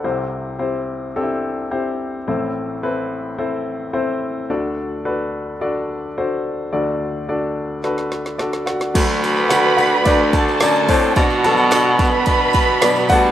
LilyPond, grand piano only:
<<
  \new Staff \with { instrumentName = "Grand piano" } { \time 4/4 \key d \mixolydian \tempo 4 = 108 << { <a' fis''>16 r2. r8. | r1 | r1 | r2. d''8 <fis' fis''>8~ |
<fis' fis''>4 <fis' fis''>8 <fis' fis''>8 <d' d''>4 <d' d''>8 <c' c''>8 | <d' d''>8 <a' a''>4. r4 d''8 <fis' fis''>8 | } \\ { <c' e' g' c''>4 <c' e' g' c''>4 <c' d' e' g' a'>4 <c' e' g' c''>4 | <c' e' a' c''>4 <c' e' a' b'>4 <c' e' a' c''>4 <c' e' a' c''>4 | <d' fis' a' d''>4 <d' fis' a' b'>4 <d' fis' a' d''>4 <d' fis' a' c''>4 | <d' fis' a' d''>4 <d' fis' a' d''>4 <d' fis' a' b'>4 <d' fis' a'>4 |
r1 | r1 | } >> }
  \new Staff \with { instrumentName = "Grand piano" } { \clef bass \time 4/4 \key d \mixolydian <c, c>1 | <a,, a,>1 | <d, d>1 | <d, d>1 |
<fis a d'>4. r2 r8 | r8 <fis b d'>4. r4 <fis b d'>8 <g a b>8 | }
>>